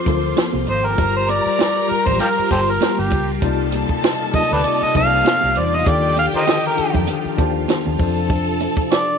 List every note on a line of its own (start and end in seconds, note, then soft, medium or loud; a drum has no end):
0.00 0.05 F3 medium
0.00 0.96 C4 medium
0.00 0.06 F4 medium
0.00 5.83 F4 medium
0.00 0.08 A4 medium
0.00 0.15 C5 loud
0.00 0.58 C5 medium
0.00 0.58 C6 medium
0.00 1.26 D6 medium
0.05 0.33 D2 medium
0.05 0.86 F3 medium
0.05 0.87 F4 medium
0.05 0.88 A4 medium
0.05 0.15 A#4 medium
0.05 kick medium
0.05 closed hi-hat medium
0.05 muted conga soft
0.05 low conga medium
0.15 0.91 C5 loud
0.37 snare loud
0.37 closed hi-hat loud
0.37 high conga medium
0.53 0.66 C2 medium
0.53 high conga medium
0.67 0.94 G#1 medium
0.67 0.76 D#4 soft
0.67 0.88 C5 medium
0.67 0.76 D#5 soft
0.67 closed hi-hat medium
0.76 0.84 F4 medium
0.76 0.84 F5 medium
0.84 0.91 G4 medium
0.84 1.16 A#4 medium
0.84 0.91 G5 medium
0.91 0.98 A4 medium
0.91 0.98 A5 medium
0.95 1.39 G1 medium
0.95 1.37 G3 medium
0.95 5.83 G3 medium
0.95 1.38 F4 medium
0.95 1.38 G4 medium
0.95 3.40 G4 medium
0.95 3.40 A#4 medium
0.95 1.39 A#4 loud
0.95 3.08 A#4 medium
0.95 3.08 A#5 medium
0.95 kick loud
0.95 closed hi-hat medium
0.95 muted conga soft
1.17 1.31 C5 medium
1.29 1.92 D5 loud
1.29 closed hi-hat medium
1.29 muted conga soft
1.43 1.83 G3 medium
1.43 1.84 F4 medium
1.43 1.84 G4 medium
1.43 1.85 A#4 medium
1.43 muted fingered electric bass stroke soft
1.59 snare loud
1.59 closed hi-hat loud
1.59 high conga medium
1.88 2.43 G3 medium
1.88 2.43 F4 medium
1.88 2.44 G4 medium
1.88 2.07 A#4 medium
1.88 2.44 A#4 medium
1.88 muted fingered electric bass stroke soft
1.88 open hi-hat medium
2.06 2.19 A1 loud
2.06 2.20 C5 medium
2.06 kick medium
2.06 low conga medium
2.19 2.29 F4 medium
2.19 2.28 G4 medium
2.19 2.49 A#4 medium
2.19 snare soft
2.19 closed hi-hat medium
2.19 muted conga soft
2.39 muted fingered electric bass stroke soft
2.50 2.77 G1 medium
2.50 3.31 G3 medium
2.50 3.32 F4 medium
2.50 2.58 G4 medium
2.50 3.32 G4 medium
2.50 2.60 A4 medium
2.50 3.33 A#4 medium
2.50 2.72 C5 medium
2.50 kick medium
2.50 closed hi-hat medium
2.50 muted conga soft
2.70 3.01 A#4 medium
2.81 snare loud
2.81 closed hi-hat loud
2.81 high conga medium
2.97 3.11 G1 medium
2.97 3.29 G4 medium
2.97 high conga medium
3.10 3.38 C#2 medium
3.10 kick loud
3.10 closed hi-hat medium
3.42 3.82 C2 medium
3.42 4.23 C3 loud
3.42 5.85 C3 medium
3.42 4.23 A#3 loud
3.42 5.85 A#3 medium
3.42 4.23 D#4 loud
3.42 5.85 D#4 medium
3.42 4.24 F4 loud
3.42 5.46 A4 medium
3.42 4.24 D5 loud
3.42 5.46 A5 medium
3.42 kick loud
3.42 closed hi-hat medium
3.42 muted conga soft
3.72 closed hi-hat medium
3.72 muted conga soft
3.89 muted fingered electric bass stroke medium
3.89 kick medium
4.04 snare loud
4.04 closed hi-hat medium
4.04 high conga medium
4.33 4.87 C3 medium
4.33 4.88 A#3 medium
4.33 4.88 D#4 medium
4.33 4.89 F4 medium
4.33 4.89 D5 medium
4.33 4.50 D#5 loud
4.33 muted fingered electric bass stroke medium
4.33 kick loud
4.33 open hi-hat medium
4.33 low conga medium
4.52 4.63 D2 medium
4.52 4.59 A4 medium
4.52 4.62 B4 medium
4.52 4.80 D5 medium
4.64 closed hi-hat medium
4.64 muted conga soft
4.82 4.95 D#5 medium
4.82 muted fingered electric bass stroke soft
4.94 5.21 C2 medium
4.94 5.75 C3 medium
4.94 5.76 A#3 medium
4.94 5.76 D#4 medium
4.94 5.76 F4 medium
4.94 5.03 C5 medium
4.94 5.60 F5 loud
4.94 kick medium
4.94 closed hi-hat medium
4.94 muted conga soft
4.94 low conga medium
5.04 5.80 D5 medium
5.25 snare loud
5.25 closed hi-hat loud
5.25 high conga medium
5.41 5.55 C2 medium
5.41 high conga medium
5.55 5.83 E2 medium
5.55 5.64 C4 medium
5.55 5.64 C5 medium
5.55 5.76 D5 loud
5.55 6.14 C6 soft
5.55 closed hi-hat medium
5.64 5.72 D4 medium
5.64 5.72 D5 medium
5.71 5.79 D#4 medium
5.71 5.79 D#5 medium
5.71 5.90 D#5 loud
5.78 5.86 F4 medium
5.78 5.86 F5 medium
5.84 6.27 D#2 loud
5.84 6.26 D#3 medium
5.84 7.98 F3 medium
5.84 6.26 D4 medium
5.84 6.27 F4 medium
5.84 9.18 F4 medium
5.84 7.65 G4 medium
5.84 6.27 G4 medium
5.84 7.98 G4 medium
5.84 6.28 A4 loud
5.84 6.18 D5 loud
5.84 7.66 G5 medium
5.84 7.98 A5 medium
5.84 kick loud
5.84 closed hi-hat medium
5.84 muted conga soft
6.16 6.26 F5 medium
6.16 closed hi-hat medium
6.16 muted conga soft
6.32 6.72 D3 medium
6.32 6.72 D#3 medium
6.32 6.72 F4 medium
6.32 6.73 G4 medium
6.32 6.74 A4 medium
6.32 muted fingered electric bass stroke soft
6.36 6.44 A#4 medium
6.36 6.44 C5 medium
6.36 6.63 D#5 medium
6.47 snare loud
6.47 closed hi-hat loud
6.47 high conga medium
6.67 6.94 A#4 medium
6.75 7.30 D#3 medium
6.75 7.31 D4 medium
6.75 7.31 F4 medium
6.75 7.32 G4 medium
6.75 muted fingered electric bass stroke soft
6.75 closed hi-hat medium
6.79 7.32 A4 medium
6.94 7.07 F2 medium
6.94 kick medium
6.94 low conga medium
7.07 closed hi-hat medium
7.07 muted conga soft
7.25 muted fingered electric bass stroke medium
7.36 7.65 D#2 medium
7.36 7.99 D#3 medium
7.36 7.99 D4 medium
7.36 8.00 F4 medium
7.36 8.00 G4 medium
7.36 8.01 C5 loud
7.36 8.26 A5 medium
7.36 kick medium
7.36 closed hi-hat medium
7.36 muted conga medium
7.68 snare loud
7.68 closed hi-hat loud
7.68 high conga medium
7.86 7.98 D#2 medium
7.86 high conga medium
7.99 8.66 F2 medium
7.99 9.18 C3 medium
7.99 9.06 F3 medium
7.99 9.07 D4 medium
7.99 9.18 A4 medium
7.99 9.07 A4 medium
7.99 9.08 C5 loud
7.99 9.18 A5 medium
7.99 kick loud
7.99 open hi-hat soft
8.28 9.18 D4 medium
8.28 kick loud
8.28 closed hi-hat medium
8.60 closed hi-hat medium
8.60 muted conga soft
8.77 muted fingered electric bass stroke soft
8.77 kick medium
8.91 9.18 D5 loud
8.91 snare loud
8.91 closed hi-hat loud
8.91 high conga medium